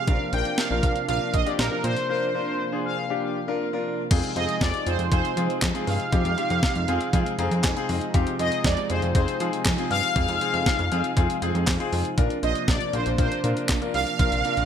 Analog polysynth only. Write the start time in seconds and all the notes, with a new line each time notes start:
Already playing: F5
0.33 G5
0.58 F5
1.08 F5
1.33 D#5
1.46 D5
1.59 A#4
1.84 C5
2.09 C5
2.85 F5
4.36 D#5
4.61 D5
4.86 C5
5.12 C5
5.87 F5
8.39 D#5
8.65 D5
8.90 C5
9.15 C5
9.91 F5
12.43 D#5
12.68 D5
12.93 C5
13.19 C5
13.94 F5